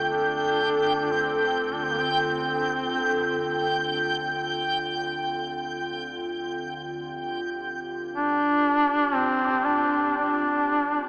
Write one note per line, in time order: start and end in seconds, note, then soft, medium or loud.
0.00 11.09 D2 medium
0.00 11.09 D3 medium
0.00 11.09 C4 medium
0.00 11.09 F4 medium
0.00 7.05 A4 medium
0.00 11.09 G5 medium
0.10 1.13 D4 loud
1.12 1.76 C4 medium
1.74 1.85 D4 medium
1.83 1.93 C4 medium
1.92 2.02 A#3 medium
2.00 2.10 C4 medium
2.11 3.58 C4 medium
6.75 11.09 G4 medium
8.13 9.16 D4 loud
9.15 9.67 C4 medium
9.65 10.15 D4 medium
10.18 11.09 D4 medium